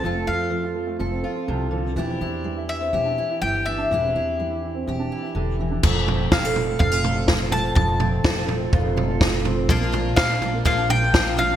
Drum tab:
CC |--------|--------|--------|x-------|
SD |--------|--------|--------|--o---o-|
FT |--------|--------|--------|oooooooo|
BD |--------|--------|--------|o-o-o-o-|

CC |--------|--------|
SD |--o---o-|--o---o-|
FT |oooooooo|oooooooo|
BD |o-o-o-o-|o-o-o-o-|